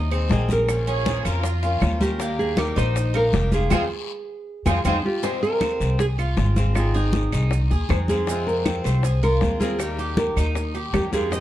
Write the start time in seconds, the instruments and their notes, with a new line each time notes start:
Already playing: upright bass D#2, cuban tres D#4, nylon-string guitar D#5
0.11 cuban tres C4, steel-string acoustic guitar C4 D#4 G#4, high conga, claves, maracas
0.29 upright bass A#1, steel-string acoustic guitar D#3 G#3 C4 D#4 G#4, nylon-string guitar D#5, high bongo, low bongo, high conga, short guiro, maracas
0.49 steel-string acoustic guitar C4 D#4 G#4, cuban tres A#4, nylon-string guitar A#4, high conga, short guiro, maracas
0.68 steel-string acoustic guitar F3 A#3 C#4 F4, high bongo, high conga, long guiro, claves, maracas
0.87 cuban tres C#4, violin section G#4, high bongo, high conga, maracas
1.05 steel-string acoustic guitar F3 A#3 C#4 F4, high bongo, high conga, short guiro, maracas
1.24 upright bass F2, cuban tres F4, violin section A#4, high bongo, short guiro, claves, maracas
1.43 violin section F4, cuban tres A#4, muted steel-string acoustic guitar stroke, high bongo, high conga, long guiro, maracas
1.62 steel-string acoustic guitar A#3 C#4 F4, cuban tres F4, high bongo, high conga, maracas
1.80 upright bass D#2, steel-string acoustic guitar F3 A#3 C#4 F4, high bongo, low bongo, high conga, short guiro, claves, maracas
2.00 steel-string acoustic guitar A#3 C#4 F4, nylon-string guitar G4, cuban tres A#4, high conga, short guiro, maracas
2.19 steel-string acoustic guitar D#3 G3 A#3 D#4 G4, cuban tres A#3, high bongo, high conga, long guiro, maracas
2.38 nylon-string guitar G#4, high conga, maracas
2.56 steel-string acoustic guitar D#3 G3 A#3 D#4 G4, cuban tres G4, nylon-string guitar A#4, high bongo, high conga, short guiro, claves, maracas
2.76 upright bass A#1, cuban tres D#4, nylon-string guitar C5, high conga, short guiro, maracas
2.95 muted steel-string acoustic guitar stroke, high bongo, high conga, long guiro, maracas
3.14 cuban tres A#3, steel-string acoustic guitar A#3 D#4 G4, nylon-string guitar A#4, high conga, claves, maracas
3.32 upright bass F1, steel-string acoustic guitar D#3 G3 A#3 D#4 G4, high bongo, low bongo, high conga, short guiro, maracas
3.52 steel-string acoustic guitar A#3 D#4 G4, cuban tres F4, nylon-string guitar G#4, high conga, short guiro, maracas
3.70 upright bass F2, steel-string acoustic guitar F3 G#3 C4, cuban tres C4 F4 G#4, violin section C4 F4 G#4, low bongo, high conga, long guiro, claves, maracas
4.66 upright bass F2, steel-string acoustic guitar F3 G#3 C4, cuban tres C4 F4 G#4, violin section C4 F4 G#4, low bongo, high conga, long guiro, claves, maracas
4.85 upright bass F2, steel-string acoustic guitar F3 G#3 C4, cuban tres C4 F4 G#4, violin section C4 F4 G#4, nylon-string guitar D#4, low bongo, high conga, long guiro, claves, maracas
5.05 nylon-string guitar F4 G4
5.22 steel-string acoustic guitar C3 F3 G#3 C4, cuban tres G#3, nylon-string guitar C5, high bongo, high conga, long guiro, maracas
5.27 steel-string acoustic guitar F4
5.42 nylon-string guitar A#4, high conga, maracas
5.61 cuban tres C4, high bongo, high conga, short guiro, claves, maracas
5.80 upright bass C2, high conga, short guiro, maracas
5.99 cuban tres G#4, nylon-string guitar G#4, muted steel-string acoustic guitar stroke, high bongo, high conga, long guiro, maracas
6.18 nylon-string guitar F4, cuban tres F4, high conga, claves, maracas
6.37 upright bass G#1, steel-string acoustic guitar F3 G#3 C4 F4, high bongo, low bongo, high conga, short guiro, maracas
6.56 steel-string acoustic guitar F3 G#3 C4 F4, cuban tres C4, high conga, short guiro, maracas
6.75 steel-string acoustic guitar D#3 G#3 C4 D#4 G#4, nylon-string guitar F4, high bongo, high conga, long guiro, claves, maracas
6.94 nylon-string guitar D#4, cuban tres G#4, high bongo, high conga, maracas
7.13 high bongo, high conga, short guiro, maracas
7.32 upright bass C2, cuban tres D#4, high bongo, short guiro, claves, maracas
7.51 muted steel-string acoustic guitar stroke, high bongo, high conga, long guiro, maracas
7.70 upright bass D#2, cuban tres G#4, high bongo, high conga, maracas
7.89 upright bass F2, steel-string acoustic guitar G#3 C4 D#4 G#4, nylon-string guitar C5, high bongo, low bongo, high conga, short guiro, claves, maracas
8.08 steel-string acoustic guitar G#3 C4 D#4 G#4, cuban tres F4, nylon-string guitar G#4, high conga, short guiro, maracas
8.27 steel-string acoustic guitar C3 F3 G#3 C4 F4, cuban tres G#3, high bongo, high conga, long guiro, maracas
8.47 nylon-string guitar A#4, high conga, maracas
8.65 cuban tres C4, high bongo, high conga, short guiro, claves, maracas
8.84 upright bass C2, nylon-string guitar C5, high conga, short guiro, maracas
9.03 cuban tres G#4, muted steel-string acoustic guitar stroke, high bongo, high conga, long guiro, maracas
9.22 cuban tres F4, nylon-string guitar A#4, high conga, claves, maracas
9.41 upright bass D#2, steel-string acoustic guitar F3 G#3 C4 F4, high bongo, low bongo, high conga, short guiro, maracas
9.60 steel-string acoustic guitar F3 G#3 C4 F4, cuban tres A#3, nylon-string guitar G#4, high conga, short guiro, maracas
9.78 steel-string acoustic guitar D#3 G3 A#3 D#4 G4, nylon-string guitar G4, high bongo, high conga, long guiro, claves, maracas
9.98 cuban tres G4, high bongo, high conga, maracas
10.17 nylon-string guitar A#4, high bongo, high conga, short guiro, maracas
10.36 upright bass D#2, cuban tres D#4, high bongo, short guiro, claves, maracas
10.55 muted steel-string acoustic guitar stroke, high bongo, high conga, long guiro, maracas
10.75 cuban tres G4, high bongo, high conga, maracas
10.93 upright bass F2, steel-string acoustic guitar G3 A#3 D#4 G4, nylon-string guitar G4, high bongo, low bongo, high conga, short guiro, claves, maracas
11.12 steel-string acoustic guitar G3 A#3 D#4 G4, cuban tres F4, nylon-string guitar G#4, high conga, short guiro, maracas
11.30 steel-string acoustic guitar C3 F3 G#3 G4, nylon-string guitar D#5, high bongo, high conga, long guiro, maracas